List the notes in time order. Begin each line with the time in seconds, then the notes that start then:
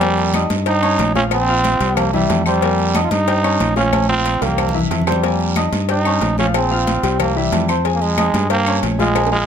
Already playing: F2 G3
0.01 A#3 A#4 G#5, cowbell, high conga, long guiro
0.17 high conga, low agogo
0.34 D#4 D#5 D#6, cowbell, high conga, low timbale, low agogo, short guiro, claves
0.50 G2, cowbell, high conga, short guiro
0.66 D#4 G4 G5 G6, cowbell, high conga, low agogo, long guiro
0.82 C#4 C#5 C#6, high conga, low agogo, claves
0.99 A#1, cowbell, high conga, low timbale, short guiro
1.15 F3 C#4 F4 F5, high conga, short guiro
1.31 G#3 C4 G#4 G#5, cowbell, high conga, low agogo, long guiro, claves
1.48 F4 F5 F6, high conga
1.64 cowbell, high conga, low timbale, low agogo, short guiro
1.80 C2 G3 G4 G5, cowbell, high conga, short guiro
1.97 A#3, cowbell, high conga, low conga, low agogo, long guiro, claves
2.13 E3 G3 E4 E5, high conga, low conga
2.30 F2, cowbell, high conga, low timbale, low agogo, short guiro
2.46 G3 C4 C5 C6, low agogo, short guiro, claves
2.62 A#3 A#4 G#5, cowbell, high conga, long guiro
2.79 high conga, low agogo
2.95 D#4 D#5 D#6, cowbell, high conga, low timbale, low agogo, short guiro, claves
3.04 F4
3.11 G2 D#4, cowbell, high conga, short guiro
3.27 G4 G5 G6, cowbell, high conga, low agogo, long guiro
3.44 C#4 C#5 C#6, high conga, low agogo, claves
3.60 A#1, cowbell, high conga, low timbale, short guiro
3.76 F3 C#4 F4 F5, high conga, short guiro
3.93 G#3 G#4 G#5, cowbell, high conga, low agogo, long guiro, claves
4.04 high conga
4.08 C4 F4 F5 F6
4.25 cowbell, low timbale, low agogo, short guiro
4.41 C2 G3 A#3 G4 G5, cowbell, high timbale, short guiro
4.47 low conga
4.58 cowbell, low conga, low agogo, long guiro, claves
4.69 low conga
4.74 E3 E4 E5
4.80 low conga
4.91 F2, cowbell, low timbale, low agogo, short guiro
5.01 low conga
5.07 G3 C4 C5 C6, low timbale, low agogo, short guiro, claves
5.12 low conga
5.23 A#3 A#4 G#5, cowbell, high conga, long guiro
5.40 high conga, low agogo
5.56 D#4 D#5 D#6, cowbell, high conga, low timbale, low agogo, short guiro, claves
5.72 G2, cowbell, high conga, short guiro
5.89 D#4 G4 G5 G6, cowbell, high conga, low agogo, long guiro
6.05 C#4 C#5 C#6, high conga, low agogo, claves
6.21 A#1, cowbell, high conga, low timbale, short guiro
6.38 F3 C#4 F4 F5, high conga, short guiro
6.54 G#3 C4 G#4 G#5, cowbell, low agogo, long guiro, claves
6.71 F4 F5 F6, high conga
6.87 cowbell, high conga, low timbale, low agogo, short guiro
7.03 C2 G3 G4 G5, cowbell, high conga, short guiro
7.19 A#3, cowbell, high conga, low conga, low agogo, long guiro, claves
7.36 E3 G3 E4 E5, high conga
7.52 F2, cowbell, high conga, low timbale, low agogo, short guiro
7.68 C4 C5 C6, high conga, low agogo, short guiro, claves
7.85 G#3 G#4 G#5, cowbell, high conga, long guiro
7.95 A#3
8.01 G#3, high conga, low agogo
8.18 D#4 D#5 D#6, cowbell, high conga, low timbale, low agogo, short guiro, claves
8.34 G2, cowbell, high conga, short guiro
8.50 A#3 G4 G5 G6, cowbell, high conga, low agogo, long guiro
8.67 C#4 C#5 C#6, high conga, low agogo, claves
8.83 A#1, cowbell, high conga, low timbale, short guiro
8.99 F3 G#3 F4 F5, high conga, short guiro
9.15 G#3 G#4 G#5, cowbell, high timbale, low agogo, long guiro, claves
9.27 high timbale
9.32 G#3 F4 F5 F6, high conga
9.37 high timbale